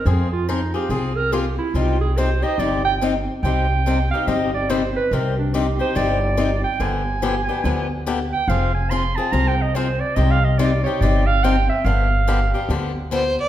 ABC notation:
X:1
M:4/4
L:1/8
Q:"Swing" 1/4=142
K:Cm
V:1 name="Clarinet"
A F E G A B G =E | F A c e d g z2 | g3 f e d c =B | B D G c d3 g |
a6 z g | f a c' =a (3b g e c d | (3e f e d _d =d f g =e | f4 z4 |]
V:2 name="Violin"
z8 | z8 | z8 | z8 |
z8 | z8 | z8 | z6 c d |]
V:3 name="Steel-string acoustic guitar"
[F,CFA] z [F,CFA] [CFA] [F,CFA] z [F,CFA] z | [C,G,CEG] z [C,G,CEG] [CEG] [C,G,CEG] z [C,G,CEG] z | [C,G,CEG] z [C,G,CEG] [CEG] [C,G,CEG] z [C,G,CEG] z | [C,G,CEG] z [C,G,CEG] [CEG] [C,G,CEG] z [C,G,CEG] z |
[D,F,=B,DG] z [D,F,B,DG] [B,DG] [D,F,B,DG] z [D,F,B,DG] z | [F,CFA] z [F,CFA] [CFA] [F,CFA] z [F,CFA] z | [C,G,CEG] z [C,G,CEG] [CEG] [C,G,CEG] z [C,G,CEG] z | [D,F,=B,DG] z [D,F,B,DG] [B,DG] [D,F,B,DG] z [D,F,B,DG] z |]
V:4 name="Upright bass" clef=bass
F,,4 C,,4 | C,,4 G,,,4 | C,,4 G,,,4 | C,,4 G,,,4 |
G,,,4 D,,4 | F,,,4 C,,4 | C,,4 G,,,4 | G,,,4 D,,4 |]